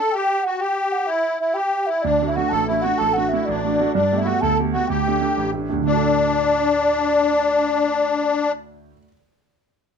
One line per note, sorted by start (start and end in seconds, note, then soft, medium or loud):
0.00 0.14 A4 medium
0.00 0.13 A5 medium
0.12 0.44 G4 medium
0.12 0.45 G5 loud
0.44 0.61 F#4 medium
0.44 0.58 F#5 medium
0.58 1.10 G4 medium
0.58 0.93 G5 medium
0.92 1.08 F#5 medium
1.07 1.39 E4 medium
1.07 1.40 E5 loud
1.40 1.57 E4 medium
1.40 1.56 E5 medium
1.54 1.89 G4 medium
1.54 1.88 G5 medium
1.86 2.05 E4 medium
1.86 2.03 E5 medium
2.02 2.36 D2 medium
2.02 2.30 D4 medium
2.02 2.27 D5 medium
2.22 2.35 A3 soft
2.22 2.36 D4 soft
2.22 2.36 F#4 soft
2.27 2.36 E4 medium
2.27 2.37 E5 medium
2.35 2.63 A3 medium
2.35 2.63 D4 soft
2.35 2.52 F#4 medium
2.35 2.63 F#4 medium
2.35 2.51 F#5 medium
2.49 2.83 A1 medium
2.49 2.67 A4 medium
2.49 2.67 A5 medium
2.67 2.83 A3 soft
2.67 2.84 D4 soft
2.67 2.84 E4 medium
2.67 2.85 F#4 soft
2.67 2.83 E5 medium
2.82 3.11 A3 soft
2.82 3.11 D4 soft
2.82 2.99 F#4 medium
2.82 2.99 F#5 medium
2.86 3.11 F#4 medium
2.98 3.31 A1 medium
2.98 3.16 A4 medium
2.98 3.15 A5 loud
3.13 3.32 F#4 medium
3.13 3.30 F#5 medium
3.18 3.32 A3 soft
3.18 3.32 D4 soft
3.18 3.32 F#4 soft
3.29 3.48 E4 medium
3.29 3.47 E5 medium
3.33 3.59 A3 medium
3.33 3.59 D4 soft
3.33 3.59 F#4 medium
3.45 3.79 A1 medium
3.45 3.92 D4 medium
3.45 3.92 D5 medium
3.65 3.79 A3 soft
3.65 3.79 D4 soft
3.65 3.79 F#4 soft
3.80 3.92 A3 soft
3.80 3.92 D4 soft
3.80 3.93 F#4 medium
3.93 4.26 G2 medium
3.93 4.20 D4 medium
3.93 4.19 D5 medium
4.12 4.26 A3 medium
4.12 4.26 B3 soft
4.12 4.26 G4 medium
4.18 4.27 E4 medium
4.18 4.27 E5 medium
4.25 4.53 A3 medium
4.25 4.53 B3 soft
4.25 4.40 F#4 medium
4.25 4.53 G4 medium
4.25 4.43 F#5 medium
4.41 4.74 D2 medium
4.41 4.58 A4 medium
4.41 4.59 A5 medium
4.60 4.73 A3 soft
4.60 4.73 B3 soft
4.60 4.74 G4 soft
4.73 4.87 A3 soft
4.73 4.87 B3 soft
4.73 4.88 F#4 medium
4.73 4.87 G4 soft
4.73 4.89 F#5 medium
4.87 5.21 D2 medium
4.87 5.50 G4 medium
4.87 5.53 G5 medium
5.07 5.20 A3 soft
5.07 5.21 D4 soft
5.07 5.21 G4 medium
5.22 5.48 A3 soft
5.22 5.48 D4 soft
5.22 5.48 G4 medium
5.37 5.69 A1 medium
5.54 5.68 A3 soft
5.54 5.68 D4 soft
5.54 5.69 G4 soft
5.69 8.88 D2 medium
5.69 5.82 A3 soft
5.69 5.82 D4 soft
5.69 5.82 G4 soft
5.77 8.93 A2 soft
5.82 8.97 D3 soft
5.82 8.52 D4 loud
5.82 8.51 D5 medium
5.87 9.03 A3 soft
5.92 9.07 F#4 soft
5.97 9.12 A4 medium